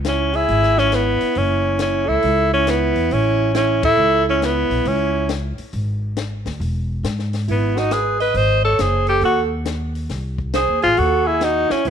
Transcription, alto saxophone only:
0, 0, Header, 1, 2, 480
1, 0, Start_track
1, 0, Key_signature, 4, "minor"
1, 0, Tempo, 437318
1, 1486, Time_signature, 4, 2, 24, 8
1, 13061, End_track
2, 0, Start_track
2, 0, Title_t, "Alto saxophone"
2, 0, Program_c, 0, 65
2, 68, Note_on_c, 0, 64, 67
2, 367, Note_on_c, 0, 68, 83
2, 384, Note_off_c, 0, 64, 0
2, 852, Note_on_c, 0, 64, 71
2, 869, Note_off_c, 0, 68, 0
2, 1022, Note_off_c, 0, 64, 0
2, 1022, Note_on_c, 0, 64, 63
2, 1496, Note_off_c, 0, 64, 0
2, 1496, Note_on_c, 0, 64, 65
2, 1971, Note_off_c, 0, 64, 0
2, 1977, Note_on_c, 0, 64, 69
2, 2264, Note_on_c, 0, 69, 82
2, 2280, Note_off_c, 0, 64, 0
2, 2753, Note_off_c, 0, 69, 0
2, 2770, Note_on_c, 0, 64, 75
2, 2938, Note_off_c, 0, 64, 0
2, 2938, Note_on_c, 0, 64, 70
2, 3412, Note_off_c, 0, 64, 0
2, 3412, Note_on_c, 0, 64, 68
2, 3878, Note_off_c, 0, 64, 0
2, 3885, Note_on_c, 0, 64, 73
2, 4179, Note_off_c, 0, 64, 0
2, 4210, Note_on_c, 0, 69, 81
2, 4652, Note_off_c, 0, 69, 0
2, 4702, Note_on_c, 0, 64, 70
2, 4861, Note_off_c, 0, 64, 0
2, 4861, Note_on_c, 0, 64, 64
2, 5352, Note_off_c, 0, 64, 0
2, 5352, Note_on_c, 0, 64, 74
2, 5818, Note_off_c, 0, 64, 0
2, 8215, Note_on_c, 0, 64, 58
2, 8511, Note_on_c, 0, 66, 66
2, 8527, Note_off_c, 0, 64, 0
2, 8699, Note_on_c, 0, 71, 60
2, 8715, Note_off_c, 0, 66, 0
2, 8994, Note_off_c, 0, 71, 0
2, 9000, Note_on_c, 0, 75, 76
2, 9177, Note_off_c, 0, 75, 0
2, 9177, Note_on_c, 0, 75, 87
2, 9483, Note_off_c, 0, 75, 0
2, 9490, Note_on_c, 0, 73, 74
2, 9666, Note_on_c, 0, 72, 65
2, 9683, Note_off_c, 0, 73, 0
2, 9958, Note_off_c, 0, 72, 0
2, 9964, Note_on_c, 0, 69, 73
2, 10115, Note_off_c, 0, 69, 0
2, 10132, Note_on_c, 0, 69, 72
2, 10423, Note_off_c, 0, 69, 0
2, 11569, Note_on_c, 0, 72, 83
2, 11860, Note_off_c, 0, 72, 0
2, 11866, Note_on_c, 0, 68, 81
2, 12049, Note_on_c, 0, 69, 73
2, 12065, Note_off_c, 0, 68, 0
2, 12346, Note_on_c, 0, 68, 72
2, 12363, Note_off_c, 0, 69, 0
2, 12543, Note_on_c, 0, 66, 65
2, 12559, Note_off_c, 0, 68, 0
2, 12834, Note_on_c, 0, 64, 70
2, 12850, Note_off_c, 0, 66, 0
2, 13000, Note_off_c, 0, 64, 0
2, 13000, Note_on_c, 0, 64, 71
2, 13061, Note_off_c, 0, 64, 0
2, 13061, End_track
0, 0, End_of_file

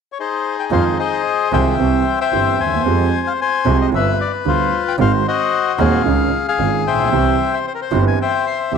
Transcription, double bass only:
0, 0, Header, 1, 2, 480
1, 0, Start_track
1, 0, Key_signature, -4, "minor"
1, 0, Tempo, 534759
1, 636, Time_signature, 4, 2, 24, 8
1, 7878, End_track
2, 0, Start_track
2, 0, Title_t, "Double bass"
2, 0, Program_c, 0, 43
2, 633, Note_on_c, 0, 41, 64
2, 837, Note_off_c, 0, 41, 0
2, 1362, Note_on_c, 0, 36, 73
2, 1563, Note_off_c, 0, 36, 0
2, 1605, Note_on_c, 0, 36, 64
2, 1805, Note_off_c, 0, 36, 0
2, 2084, Note_on_c, 0, 31, 44
2, 2284, Note_off_c, 0, 31, 0
2, 2323, Note_on_c, 0, 39, 42
2, 2557, Note_off_c, 0, 39, 0
2, 2563, Note_on_c, 0, 41, 69
2, 2764, Note_off_c, 0, 41, 0
2, 3279, Note_on_c, 0, 36, 78
2, 3479, Note_off_c, 0, 36, 0
2, 3518, Note_on_c, 0, 31, 73
2, 3718, Note_off_c, 0, 31, 0
2, 3997, Note_on_c, 0, 38, 45
2, 4196, Note_off_c, 0, 38, 0
2, 4476, Note_on_c, 0, 32, 72
2, 4675, Note_off_c, 0, 32, 0
2, 5193, Note_on_c, 0, 39, 80
2, 5392, Note_off_c, 0, 39, 0
2, 5429, Note_on_c, 0, 37, 68
2, 5630, Note_off_c, 0, 37, 0
2, 5909, Note_on_c, 0, 32, 46
2, 6109, Note_off_c, 0, 32, 0
2, 6150, Note_on_c, 0, 34, 46
2, 6382, Note_off_c, 0, 34, 0
2, 6387, Note_on_c, 0, 36, 68
2, 6588, Note_off_c, 0, 36, 0
2, 7107, Note_on_c, 0, 31, 67
2, 7309, Note_off_c, 0, 31, 0
2, 7830, Note_on_c, 0, 36, 43
2, 7878, Note_off_c, 0, 36, 0
2, 7878, End_track
0, 0, End_of_file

